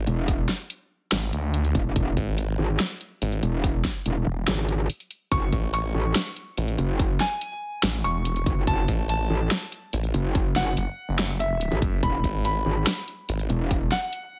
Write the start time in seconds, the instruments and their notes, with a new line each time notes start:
0.07 wobble bass E1, closed hi-hat
0.28 kick, closed hi-hat
0.49 snare, closed hi-hat
0.70 closed hi-hat
1.12 detuned saw bass G#1, snare, closed hi-hat
1.33 detuned saw bass D2, closed hi-hat
1.54 closed hi-hat
1.65 closed hi-hat
1.75 wobble bass E1, kick, closed hi-hat
1.96 wobble bass E1, kick, closed hi-hat
2.17 detuned saw bass G#1, kick, closed hi-hat
2.38 closed hi-hat
2.59 wobble bass G#1
2.80 snare, closed hi-hat
3.01 closed hi-hat
3.22 detuned saw bass G#1, closed hi-hat
3.32 closed hi-hat
3.43 wobble bass E1, closed hi-hat
3.64 kick, closed hi-hat
3.85 kick, snare, closed hi-hat
4.06 wobble bass E1, closed hi-hat
4.27 detuned saw bass E1
4.48 wobble bass G#1, snare, closed hi-hat
4.69 closed hi-hat
4.90 closed hi-hat
5.00 closed hi-hat
5.11 closed hi-hat
5.32 wobble bass F#1, grand piano C#6, kick, closed hi-hat
5.53 detuned saw bass A1, kick, closed hi-hat
5.74 grand piano C#6, closed hi-hat
5.95 wobble bass A1
6.16 snare, closed hi-hat
6.37 closed hi-hat
6.57 detuned saw bass A1, closed hi-hat
6.68 closed hi-hat
6.78 wobble bass F#1, closed hi-hat
6.99 kick, closed hi-hat
7.20 grand piano G#5, snare, closed hi-hat
7.41 closed hi-hat
7.83 detuned saw bass A1, snare, closed hi-hat
8.04 detuned saw bass E1, grand piano C#6, closed hi-hat
8.25 closed hi-hat
8.36 closed hi-hat
8.46 wobble bass F#1, kick, closed hi-hat
8.67 wobble bass F#1, grand piano A5, kick, closed hi-hat
8.88 detuned saw bass A1, kick, closed hi-hat
9.09 grand piano A5, closed hi-hat
9.30 wobble bass A1
9.51 snare, closed hi-hat
9.72 closed hi-hat
9.93 detuned saw bass A1, closed hi-hat
10.04 closed hi-hat
10.14 wobble bass F#1, closed hi-hat
10.35 kick, closed hi-hat
10.56 wobble bass F#1, grand piano F#5, snare, closed hi-hat
10.77 detuned saw bass F#1, closed hi-hat
11.09 detuned saw bass F#1
11.19 snare, closed hi-hat
11.40 grand piano E5, closed hi-hat
11.61 closed hi-hat
11.72 wobble bass A1, closed hi-hat
11.82 detuned saw bass F#1, kick, closed hi-hat
12.03 wobble bass E1, grand piano B5, kick, closed hi-hat
12.24 detuned saw bass G#1, kick, closed hi-hat
12.45 grand piano B5, closed hi-hat
12.66 wobble bass G#1
12.87 snare, closed hi-hat
13.08 closed hi-hat
13.29 detuned saw bass G#1, closed hi-hat
13.39 closed hi-hat
13.50 wobble bass E1, closed hi-hat
13.71 kick, closed hi-hat
13.92 grand piano F#5, snare, closed hi-hat
14.13 closed hi-hat